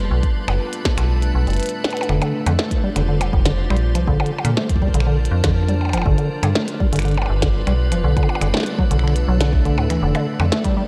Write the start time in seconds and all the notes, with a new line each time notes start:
Already playing: A4 A5
0.11 B1 A3 D4 B4
0.23 kick, closed hi-hat
0.48 F#1, finger snap, percussion blips
0.73 closed hi-hat
0.85 kick, snare
0.98 B1, finger snap, closed hi-hat
1.22 closed hi-hat
1.35 B1
1.47 F#1, closed hi-hat
1.50 closed hi-hat
1.53 closed hi-hat
1.57 closed hi-hat
1.60 closed hi-hat
1.63 closed hi-hat
1.66 closed hi-hat
1.69 closed hi-hat
1.84 snare, closed hi-hat, percussion blips
1.91 closed hi-hat, percussion blips
1.97 closed hi-hat
2.01 closed hi-hat, percussion blips
2.09 F1 D3 G3 F4 C5, finger snap
2.22 D3, closed hi-hat, percussion blips
2.46 F2 D3, finger snap, closed hi-hat, percussion blips
2.59 A3, snare
2.71 kick, closed hi-hat
2.84 G3
2.96 F1 D3, finger snap, closed hi-hat
3.08 D3
3.21 closed hi-hat, percussion blips
3.33 F1, kick
3.46 D3, snare, closed hi-hat
3.70 A#1 G3, finger snap
3.77 closed hi-hat
3.95 C2 F3, finger snap, closed hi-hat
4.07 A#1 D3 F3 D4 A#4, kick
4.20 D3, percussion blips
4.26 closed hi-hat
4.38 percussion blips
4.45 A#2 D3, finger snap, closed hi-hat
4.57 A3, snare
4.69 kick, closed hi-hat
4.76 kick
4.82 G3, kick
4.88 kick
4.94 A#1 D3, closed hi-hat
5.00 finger snap
5.07 D3
5.25 closed hi-hat
5.31 F2
5.44 F2 D3, finger snap, kick, snare, closed hi-hat
5.69 G3, closed hi-hat
5.81 percussion blips
5.85 percussion blips
5.89 percussion blips
5.93 F1 F3, finger snap, closed hi-hat, percussion blips
5.97 percussion blips
6.02 percussion blips
6.06 G1 D3 G3 F4 B4, kick
6.18 D3, closed hi-hat
6.43 G2 D3, finger snap, closed hi-hat, percussion blips
6.55 A3, snare
6.68 closed hi-hat
6.80 G3, kick
6.92 G1 D3, closed hi-hat
6.96 finger snap, closed hi-hat
6.99 closed hi-hat
7.02 D3, closed hi-hat
7.05 closed hi-hat
7.11 closed hi-hat
7.14 closed hi-hat, percussion blips
7.22 percussion blips
7.26 G1, percussion blips
7.42 D3, kick, snare, closed hi-hat
7.67 B1 G3, finger snap, closed hi-hat
7.92 F1 F3, finger snap, closed hi-hat
8.04 B1 D3 A3 D4
8.17 D3, kick, closed hi-hat, percussion blips
8.23 percussion blips
8.29 percussion blips
8.35 percussion blips
8.41 F#1 D3, finger snap, closed hi-hat
8.54 A3, snare, percussion blips
8.57 snare
8.60 snare
8.63 snare, closed hi-hat
8.79 F#3, kick
8.91 B1 D3, finger snap, closed hi-hat
8.99 finger snap
9.03 D3
9.08 finger snap
9.16 closed hi-hat
9.28 B1 F#3
9.41 D3, finger snap, snare, closed hi-hat
9.53 kick
9.65 D3, closed hi-hat
9.78 D2 A2, percussion blips
9.90 E3, finger snap, closed hi-hat
10.02 F1 D3 G3 F4 C5
10.15 D3, closed hi-hat, percussion blips
10.40 F2 D3, finger snap, percussion blips
10.52 A3, snare, closed hi-hat
10.64 G3, kick, closed hi-hat
10.77 G3